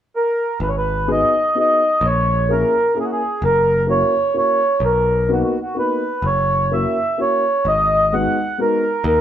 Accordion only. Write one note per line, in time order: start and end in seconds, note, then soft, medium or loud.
0.16 0.59 A#4 medium
0.62 0.69 B4 medium
0.68 0.76 C#5 medium
0.78 1.10 B4 medium
1.11 1.58 D#5 medium
1.60 2.06 D#5 medium
2.06 2.52 C#5 loud
2.52 2.98 A#4 medium
3.00 3.05 G#4 medium
3.04 3.11 F#4 medium
3.12 3.44 G#4 medium
3.45 3.86 A#4 medium
3.90 4.36 C#5 medium
4.38 4.84 C#5 medium
4.85 5.31 A#4 medium
5.33 5.42 F#4 medium
5.43 5.59 F#4 medium
5.62 5.77 F#4 medium
5.79 6.26 B4 medium
6.26 6.74 C#5 loud
6.73 7.20 E5 medium
7.21 7.67 C#5 medium
7.68 8.14 D#5 medium
8.14 8.60 F#5 medium
8.61 9.05 A#4 medium
9.07 9.21 A#4 medium